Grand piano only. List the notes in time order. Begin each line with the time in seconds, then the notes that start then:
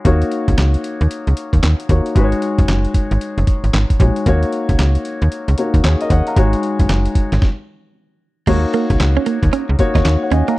0.05 A#3 D#4 F#4 C#5
1.90 A#3 D#4 F#4 C#5
2.15 G#3 D#4 F#4 B4
2.24 C#5
4.00 G#3 D#4 F#4 C#5
4.26 A#3 D#4 F#4 C#5
5.58 A#3 D#4 F#4 C#5
5.85 G#4 C#5
6.01 A#4 D#5
6.11 C#5 F#5
6.28 F5 A#5
6.36 G#3 D#4 F#4 C#5
8.47 A#3 D#4 F#4 C#5
9.79 A#3 D#4 F#4 C#5
10.23 C#5 F#5
10.32 D#5 G#5
10.49 F5 A#5